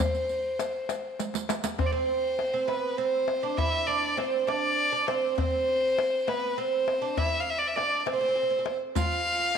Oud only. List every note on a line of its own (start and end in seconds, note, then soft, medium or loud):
1.79 1.91 C4 medium
1.92 2.52 C4 medium
2.54 2.69 C4 medium
2.68 2.99 B3 medium
2.98 3.43 C4 medium
3.43 3.57 D4 medium
3.58 3.86 E4 medium
3.88 4.17 D4 medium
4.17 4.45 C4 medium
4.47 4.91 D4 medium
4.92 5.08 D4 medium
5.08 5.37 C4 medium
5.38 6.30 C4 medium
6.27 6.58 B3 medium
6.58 7.01 C4 medium
7.02 7.17 D4 medium
7.17 7.39 E4 medium
7.76 8.04 D4 medium
8.06 8.12 C4 medium
8.13 8.20 C4 soft
8.21 8.27 C4 medium
8.29 8.34 C4 soft
8.36 8.42 C4 medium
8.43 8.49 C4 soft
8.50 8.58 C4 medium
8.59 8.66 C4 soft
8.95 9.58 F4 medium